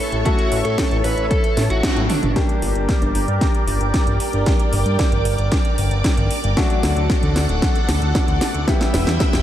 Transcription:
Already playing: grand piano A3 C#4 E4 B4, lead electric guitar A4, string machine A4 C#5 E5 C#6
0.12 analog synth bass A1, closed hi-hat
0.25 grand piano A3 C#4 E4 A4, lead electric guitar F#4, kick, closed hi-hat
0.39 closed hi-hat
0.52 analog synth bass A1, open hi-hat
0.65 analog synth bass A2, lead electric guitar A4, closed hi-hat
0.78 kick, snare, closed hi-hat
0.91 analog synth bass A1, closed hi-hat
1.04 analog synth bass A1, lead electric guitar B4, open hi-hat
1.17 analog synth bass A1, closed hi-hat
1.31 lead electric guitar A4, kick, closed hi-hat
1.44 closed hi-hat
1.57 analog synth bass A2, snare, open hi-hat
1.70 analog synth bass A1, lead electric guitar F#4, closed hi-hat
1.83 kick, snare, closed hi-hat
1.96 analog synth bass A2, closed hi-hat, high tom
2.10 lead electric guitar D4, open hi-hat, mid tom
2.23 analog synth bass G1, closed hi-hat, mid tom
2.36 grand piano G3 A#3 D4 G4, string machine A#4 D5 G5 D6, kick, snare, closed hi-hat
2.49 closed hi-hat
2.62 analog synth bass G1, open hi-hat
2.75 analog synth bass G1, closed hi-hat
2.89 kick, snare, closed hi-hat
3.02 analog synth bass G1, closed hi-hat
3.15 analog synth bass G1, open hi-hat
3.28 analog synth bass G2, closed hi-hat
3.41 kick, snare, closed hi-hat
3.54 closed hi-hat
3.67 analog synth bass G1, open hi-hat
3.81 analog synth bass G1, closed hi-hat
3.94 kick, snare, closed hi-hat
4.07 analog synth bass G1, closed hi-hat
4.20 open hi-hat
4.33 analog synth bass G1, closed hi-hat
4.46 kick, snare, closed hi-hat
4.59 closed hi-hat
4.73 analog synth bass G1, open hi-hat
4.86 analog synth bass G2, closed hi-hat
4.99 kick, snare, closed hi-hat
5.12 analog synth bass G1, closed hi-hat
5.25 analog synth bass G1, open hi-hat
5.38 analog synth bass G1, closed hi-hat
5.52 kick, snare, closed hi-hat
5.65 closed hi-hat
5.78 analog synth bass G1, open hi-hat
5.91 analog synth bass G1, closed hi-hat
6.04 kick, snare, closed hi-hat
6.17 analog synth bass G1, closed hi-hat
6.31 open hi-hat
6.44 analog synth bass G1, closed hi-hat
6.57 grand piano F#3 A3 D4 F#4, string machine A4 F#5, kick, snare, closed hi-hat
6.70 closed hi-hat
6.83 analog synth bass D2, snare, open hi-hat
6.97 analog synth bass D2, closed hi-hat
7.10 kick, snare, closed hi-hat
7.23 analog synth bass D2, closed hi-hat
7.36 analog synth bass D2, snare, open hi-hat
7.49 analog synth bass D1, closed hi-hat
7.62 kick, snare, closed hi-hat
7.75 closed hi-hat
7.89 analog synth bass D2, snare, open hi-hat
8.02 analog synth bass D2, closed hi-hat
8.15 kick, snare, closed hi-hat
8.28 analog synth bass D2, closed hi-hat
8.41 snare, open hi-hat
8.54 analog synth bass D2, closed hi-hat
8.68 grand piano G3 B3 E4 G4, string machine B4 E5 G5 E6, kick, snare, closed hi-hat
8.81 snare, closed hi-hat
8.94 analog synth bass E1, snare, open hi-hat
9.07 analog synth bass E2, snare, closed hi-hat
9.20 kick, snare, closed hi-hat
9.33 analog synth bass E1, snare, closed hi-hat

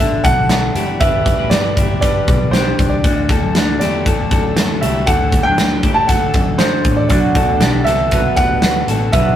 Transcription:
Already playing: picked electric bass A1, string machine B2 D3 G3 D4, upright piano E5
0.00 clean electric guitar D4 A4
0.24 picked electric bass B1, clean electric guitar F#4 A4, upright piano F#5, kick, closed hi-hat
0.49 snare, closed hi-hat
0.75 picked electric bass F#1, clean electric guitar E4 G4, closed hi-hat
1.00 picked electric bass G1, clean electric guitar G4 B4, upright piano E5, kick, closed hi-hat
1.26 kick, closed hi-hat
1.39 picked electric bass A1, clean electric guitar G4 B4
1.50 picked electric bass G1, upright piano D5, snare, closed hi-hat
1.77 picked electric bass G1, clean electric guitar E4 G4, kick, closed hi-hat
2.01 clean electric guitar G4 B4, upright piano D5, kick, closed hi-hat
2.28 picked electric bass B1, kick, closed hi-hat
2.51 clean electric guitar D4 G4, upright piano C5, snare, closed hi-hat
2.79 picked electric bass C2, kick, closed hi-hat
2.89 upright piano D5
3.04 picked electric bass D2, string machine F#3 A3 A4, clean electric guitar D4 F#4, kick, closed hi-hat
3.29 clean electric guitar F#4 A4, kick, closed hi-hat
3.42 picked electric bass F#2
3.55 picked electric bass D2, clean electric guitar D4 F#4, snare, closed hi-hat
3.79 picked electric bass E2, clean electric guitar E4 G4, upright piano D5, snare, closed hi-hat
4.06 clean electric guitar F#4 A4, kick, closed hi-hat
4.31 picked electric bass F#2, clean electric guitar F#4 A4, kick, closed hi-hat
4.57 snare, closed hi-hat
4.81 picked electric bass C2, clean electric guitar E4 G4, upright piano E5, closed hi-hat
5.06 picked electric bass D2, clean electric guitar F#4 A4, upright piano F#5, kick, closed hi-hat
5.32 kick, closed hi-hat
5.43 picked electric bass E2, clean electric guitar F#3 D4, upright piano G5
5.58 picked electric bass D2, snare, closed hi-hat
5.83 picked electric bass D2, clean electric guitar E4 G4, kick, closed hi-hat
5.94 upright piano A5
6.07 clean electric guitar F#4 A4, upright piano F#5, kick, closed hi-hat
6.34 picked electric bass F#2, kick, closed hi-hat
6.58 clean electric guitar D4 F#4, upright piano C5, snare, closed hi-hat
6.85 picked electric bass A1, kick, closed hi-hat
6.97 upright piano D5
7.09 picked electric bass B1, steel-string acoustic guitar B2 F#3 B3 D4 F#4, string machine B2, clean electric guitar D4 F#4, upright piano D5, kick, closed hi-hat
7.35 clean electric guitar F#4 A4, kick, closed hi-hat
7.49 picked electric bass D2
7.61 picked electric bass B1, steel-string acoustic guitar F#3 B3 D4 F#4, clean electric guitar D4 G4, snare, closed hi-hat
7.84 picked electric bass C2, steel-string acoustic guitar D4 F#4, clean electric guitar F#4 A4, upright piano E5, snare, closed hi-hat
7.90 steel-string acoustic guitar B3
8.11 steel-string acoustic guitar B2 F#3 B3 D4 F#4, clean electric guitar F#4 B4, kick, closed hi-hat
8.36 picked electric bass D2, clean electric guitar G4 B4, upright piano F#5, kick, closed hi-hat
8.62 steel-string acoustic guitar F#3 B3 D4 F#4, snare, closed hi-hat
8.88 picked electric bass A1, steel-string acoustic guitar B3 D4 F#4, clean electric guitar F#4 A4, closed hi-hat
9.12 picked electric bass B1, steel-string acoustic guitar B2 F#3 B3 D4 F#4, clean electric guitar F#4 B4, upright piano E5, kick, closed hi-hat

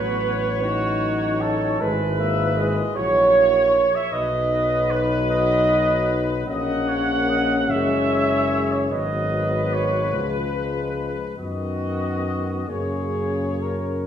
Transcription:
Already playing: tuba A1, trombone F#3, euphonium B3, flugelhorn B4, trumpet section C#5
0.63 trombone F#3, euphonium D#4, flugelhorn F#4
1.42 flugelhorn A4
1.80 tuba G#1, trombone G#3, euphonium E4, trumpet section B4, flugelhorn B4
2.18 trombone A#3, trumpet section E5
2.56 trombone G#3, trumpet section D#5
2.95 tuba A#1, trombone F#3, euphonium E4, trumpet section C#5, flugelhorn C#5
3.75 flugelhorn C#5
3.95 flugelhorn E5
4.11 tuba B1, trombone F#3, euphonium D#4, trumpet section B4, flugelhorn D#5
4.91 flugelhorn B4
5.31 flugelhorn D#5
6.46 tuba A#1, trombone A#3, euphonium C#4, trumpet section D#5, flugelhorn F#5
6.88 trumpet section C#5
7.28 trumpet section D#5
7.70 tuba F#1, trombone G#3, trumpet section C#5, flugelhorn E5
8.72 flugelhorn C#5
8.90 tuba G#1, trombone F#3, euphonium B3, trumpet section B4, flugelhorn D#5
9.73 flugelhorn C#5
10.13 tuba C#2, trombone F3, euphonium G#3, flugelhorn B4
11.37 tuba F#2, trombone D#3, euphonium B3, flugelhorn F#4, trumpet section D#5
12.68 tuba F#2, trombone C#3, euphonium A#3, flugelhorn G#4, trumpet section C#5
13.62 flugelhorn A#4

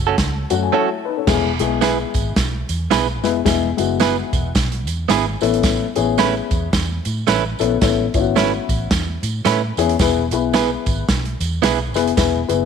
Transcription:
Already playing: fingered electric bass F#1
0.07 clean electric guitar A3 C#4 F#4 A4
0.18 fingered electric bass C#2, kick, snare, closed hi-hat, tambourine
0.50 fingered electric bass F#2, upright piano F#3 A3 C#4 F#4 F#5, closed hi-hat, tambourine
0.63 upright piano G#5
0.72 clean electric guitar A3 C#4 F#4 A4, upright piano E4 C#5 A5
1.05 upright piano D#4 B4
1.17 upright piano C#4 A4
1.27 fingered electric bass E1, upright piano G#3 B3 E4 G#4, kick, snare, crash, tambourine
1.59 fingered electric bass B1, upright piano G#3 B3 E4 G#4, closed hi-hat, tambourine
1.81 clean electric guitar B3 E4 G#4 B4, snare, closed hi-hat, tambourine
2.14 fingered electric bass G#1, kick, closed hi-hat, tambourine
2.36 fingered electric bass B1, kick, snare, closed hi-hat, tambourine
2.69 fingered electric bass E2, closed hi-hat, tambourine
2.90 fingered electric bass B1, clean electric guitar B3 E4 G#4 B4, snare, closed hi-hat, tambourine
3.23 fingered electric bass F1, upright piano G#3 B3 E4 B4, snare, closed hi-hat, tambourine
3.45 fingered electric bass E1, upright piano G#3 B3 E4 G#4, kick, snare, closed hi-hat, tambourine
3.77 fingered electric bass F#1, upright piano G#3 B3 E4 F#4, closed hi-hat, tambourine
4.00 clean electric guitar B3 E4 G#4 B4, snare, closed hi-hat, tambourine
4.33 fingered electric bass E1, kick, closed hi-hat, tambourine
4.55 fingered electric bass B1, kick, snare, closed hi-hat, tambourine
4.72 closed hi-hat
4.87 fingered electric bass E2, closed hi-hat, tambourine
5.09 fingered electric bass G#1, clean electric guitar B3 E4 G#4 B4, snare, closed hi-hat, tambourine
5.41 fingered electric bass A1, upright piano B3 C#4 E4 A4, closed hi-hat, tambourine
5.54 closed hi-hat
5.63 kick, snare, closed hi-hat, tambourine
5.96 fingered electric bass A1, upright piano B3 C#4 E4 G#4, closed hi-hat, tambourine
6.18 clean electric guitar A3 C#4 E4 B4, snare, closed hi-hat, tambourine
6.51 fingered electric bass E2, kick, closed hi-hat, tambourine
6.73 fingered electric bass E2, kick, snare, closed hi-hat, tambourine
7.05 fingered electric bass A2, closed hi-hat, tambourine
7.27 fingered electric bass A1, clean electric guitar A3 C#4 E4 B4, snare, closed hi-hat, tambourine
7.59 fingered electric bass A#1, upright piano B3 C#4 E4 A4, closed hi-hat, tambourine
7.81 fingered electric bass A1, upright piano B3 C#4 E4 A4, kick, snare, closed hi-hat, tambourine
8.14 fingered electric bass G#1, upright piano B3 C#4 E4 F4, kick, closed hi-hat, tambourine
8.21 upright piano F#4
8.36 clean electric guitar A3 C#4 E4 B4, snare, closed hi-hat, tambourine
8.69 fingered electric bass A1, kick, closed hi-hat, tambourine
8.91 fingered electric bass E2, kick, snare, closed hi-hat, tambourine
9.23 fingered electric bass A2, closed hi-hat, tambourine
9.45 fingered electric bass A2, clean electric guitar A3 C#4 E4 B4, snare, closed hi-hat, tambourine
9.77 fingered electric bass E2, upright piano B3 C#4 E4 G#4, closed hi-hat, tambourine
9.89 closed hi-hat
9.99 fingered electric bass E1, upright piano B3 E4 G#4 B4, kick, snare, closed hi-hat, tambourine
10.31 fingered electric bass B1, upright piano B3 E4 G#4 B4, closed hi-hat, tambourine
10.54 clean electric guitar B3 E4 G#4 B4, snare, closed hi-hat, tambourine
10.86 fingered electric bass G#1, kick, closed hi-hat, tambourine
11.09 fingered electric bass B1, kick, snare, closed hi-hat, tambourine
11.25 closed hi-hat
11.40 fingered electric bass E2, closed hi-hat, tambourine
11.62 fingered electric bass B1, clean electric guitar B3 E4 G#4 B4, snare, closed hi-hat, tambourine
11.94 fingered electric bass F1, upright piano B3 E4 G#4 B4, snare, closed hi-hat, tambourine
12.07 closed hi-hat
12.17 fingered electric bass E1, upright piano B3 E4 G#4 B4, kick, snare, closed hi-hat, tambourine
12.48 fingered electric bass F#1, upright piano B3 E4 G#4 B4, closed hi-hat, tambourine

